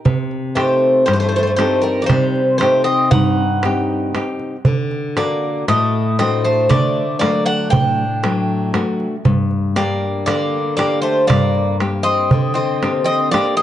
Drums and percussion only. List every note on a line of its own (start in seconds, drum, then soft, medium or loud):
0.06 darbuka dum medium
0.31 darbuka tek soft
0.57 darbuka tek medium
1.08 darbuka tek medium
1.59 darbuka tek medium
2.10 darbuka tek medium
2.10 darbuka dum medium
2.36 darbuka tek soft
2.61 darbuka tek medium
3.11 darbuka dum medium
3.63 darbuka tek medium
4.15 darbuka tek medium
4.39 darbuka tek soft
4.65 darbuka dum medium
4.91 darbuka tek soft
5.17 darbuka tek medium
5.68 darbuka tek medium
6.19 darbuka tek medium
6.71 darbuka tek medium
6.71 darbuka dum medium
6.96 darbuka tek soft
7.21 darbuka tek medium
7.73 darbuka dum medium
8.24 darbuka tek medium
8.74 darbuka tek medium
9.00 darbuka tek soft
9.25 darbuka dum medium
9.51 darbuka tek soft
9.76 darbuka tek medium
10.28 darbuka tek medium
10.79 darbuka tek medium
11.30 darbuka tek medium
11.30 darbuka dum medium
11.55 darbuka tek soft
11.80 darbuka tek medium
12.31 darbuka dum medium
12.83 darbuka tek medium
13.34 darbuka tek medium